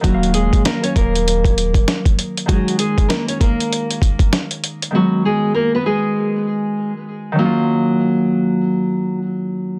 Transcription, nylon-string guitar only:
X:1
M:4/4
L:1/16
Q:"Swing 16ths" 1/4=98
K:Ebm
V:1 name="Nylon-string guitar"
[G,G]2 [A,A]2 [B,B] [Dd] [B,B]6- [B,B] z3 | [G,G]2 [A,A]2 [B,B] [Dd] [B,B]6- [B,B] z3 | [^F,^F]2 [^G,^G]2 [B,B] [=B,=B] [G,G]6- [G,G] z3 | G,12 z4 |]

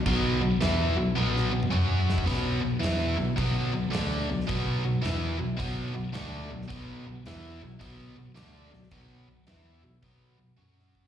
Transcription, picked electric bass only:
X:1
M:4/4
L:1/8
Q:"Swing" 1/4=108
K:Bm
V:1 name="Picked electric bass" clef=bass
B,,, B,,, E,, B,,, B,,, B,,, F,,2 | B,,, B,,, E,, B,,, B,,, B,,, D,, B,,, | B,,, B,,, E,, B,,, B,,, B,,, D,, B,,, | B,,, B,,, E,, B,,, B,,, B,,, D,, B,,, |
B,,, B,,, E,, B,,, B,,, B,,, F,,2 |]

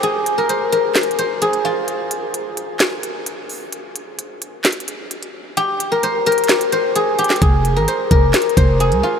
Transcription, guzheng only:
X:1
M:4/4
L:1/16
Q:1/4=130
K:Fm
V:1 name="Guzheng"
A3 B c2 B4 c2 A2 F2 | z16 | z16 | G3 B c2 B4 c2 A2 G2 |
A3 B c2 B4 c2 A2 F2 |]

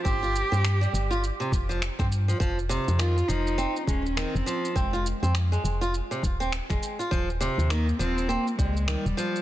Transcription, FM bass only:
X:1
M:4/4
L:1/16
Q:"Swing 16ths" 1/4=102
K:Fm
V:1 name="FM bass" clef=bass
G,,,2 z G,,2 z G,,,2 z2 F,,,2 z G,,2 z | F,,,2 z F,,2 z F,,,2 z2 E,,,2 z F,,, z2 | F,,,2 z F,,2 z F,,,2 z2 E,,,2 z F,,, z2 | E,,,2 z E,,2 z E,,,2 z2 D,,2 z E,,, z2 |]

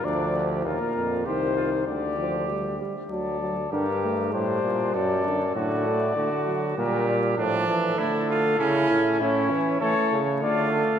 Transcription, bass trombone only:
X:1
M:3/4
L:1/8
Q:1/4=98
K:Dphr
V:1 name="Bass trombone" clef=bass
D,,2 E,, F,, C,,2 | D,,3 z D,,2 | G,,2 A,, B,, ^F,,2 | A,,2 D,2 B,,2 |
A,, =E, D,2 ^C, A,, | A,, =E, E, ^C, D, z |]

